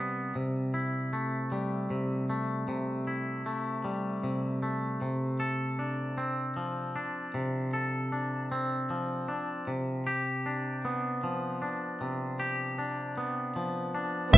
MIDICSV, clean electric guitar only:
0, 0, Header, 1, 2, 480
1, 0, Start_track
1, 0, Tempo, 777202
1, 218, Time_signature, 6, 3, 24, 8
1, 8880, End_track
2, 0, Start_track
2, 0, Title_t, "Clean electric guitar"
2, 0, Program_c, 0, 27
2, 0, Note_on_c, 0, 48, 33
2, 0, Note_on_c, 0, 55, 39
2, 0, Note_on_c, 0, 59, 40
2, 0, Note_on_c, 0, 64, 38
2, 216, Note_off_c, 0, 48, 0
2, 218, Note_off_c, 0, 59, 0
2, 218, Note_on_c, 0, 48, 42
2, 454, Note_off_c, 0, 64, 0
2, 456, Note_on_c, 0, 64, 41
2, 698, Note_on_c, 0, 57, 36
2, 716, Note_off_c, 0, 55, 0
2, 938, Note_on_c, 0, 55, 43
2, 1174, Note_off_c, 0, 48, 0
2, 1176, Note_on_c, 0, 48, 36
2, 1415, Note_off_c, 0, 57, 0
2, 1418, Note_on_c, 0, 57, 40
2, 1653, Note_off_c, 0, 48, 0
2, 1656, Note_off_c, 0, 64, 0
2, 1656, Note_on_c, 0, 48, 40
2, 1898, Note_on_c, 0, 64, 37
2, 2134, Note_off_c, 0, 57, 0
2, 2137, Note_off_c, 0, 55, 0
2, 2137, Note_on_c, 0, 57, 34
2, 2374, Note_on_c, 0, 55, 41
2, 2613, Note_off_c, 0, 48, 0
2, 2615, Note_on_c, 0, 48, 38
2, 2854, Note_off_c, 0, 57, 0
2, 2856, Note_on_c, 0, 57, 36
2, 3095, Note_off_c, 0, 48, 0
2, 3095, Note_off_c, 0, 55, 0
2, 3097, Note_off_c, 0, 64, 0
2, 3097, Note_on_c, 0, 48, 38
2, 3333, Note_on_c, 0, 69, 40
2, 3576, Note_on_c, 0, 62, 40
2, 3812, Note_off_c, 0, 57, 0
2, 3814, Note_on_c, 0, 60, 43
2, 4055, Note_on_c, 0, 53, 37
2, 4293, Note_off_c, 0, 62, 0
2, 4296, Note_on_c, 0, 62, 42
2, 4297, Note_off_c, 0, 48, 0
2, 4535, Note_off_c, 0, 69, 0
2, 4535, Note_on_c, 0, 48, 45
2, 4777, Note_on_c, 0, 69, 40
2, 5014, Note_off_c, 0, 62, 0
2, 5016, Note_off_c, 0, 60, 0
2, 5017, Note_on_c, 0, 62, 36
2, 5259, Note_on_c, 0, 60, 46
2, 5495, Note_off_c, 0, 53, 0
2, 5497, Note_on_c, 0, 53, 41
2, 5731, Note_off_c, 0, 62, 0
2, 5734, Note_on_c, 0, 62, 40
2, 5736, Note_off_c, 0, 48, 0
2, 5974, Note_on_c, 0, 48, 47
2, 5977, Note_off_c, 0, 69, 0
2, 5978, Note_off_c, 0, 60, 0
2, 5993, Note_off_c, 0, 62, 0
2, 6217, Note_on_c, 0, 67, 45
2, 6235, Note_off_c, 0, 53, 0
2, 6460, Note_on_c, 0, 62, 41
2, 6700, Note_on_c, 0, 59, 48
2, 6939, Note_on_c, 0, 53, 42
2, 7167, Note_off_c, 0, 62, 0
2, 7175, Note_on_c, 0, 62, 43
2, 7176, Note_off_c, 0, 48, 0
2, 7417, Note_on_c, 0, 48, 47
2, 7653, Note_off_c, 0, 67, 0
2, 7655, Note_on_c, 0, 67, 45
2, 7888, Note_off_c, 0, 62, 0
2, 7896, Note_on_c, 0, 62, 42
2, 7898, Note_off_c, 0, 59, 0
2, 8136, Note_on_c, 0, 59, 45
2, 8138, Note_off_c, 0, 53, 0
2, 8375, Note_on_c, 0, 53, 43
2, 8606, Note_off_c, 0, 62, 0
2, 8613, Note_on_c, 0, 62, 42
2, 8616, Note_off_c, 0, 48, 0
2, 8854, Note_off_c, 0, 62, 0
2, 8854, Note_on_c, 0, 48, 60
2, 8855, Note_off_c, 0, 53, 0
2, 8855, Note_off_c, 0, 67, 0
2, 8856, Note_off_c, 0, 59, 0
2, 8880, Note_off_c, 0, 48, 0
2, 8880, End_track
0, 0, End_of_file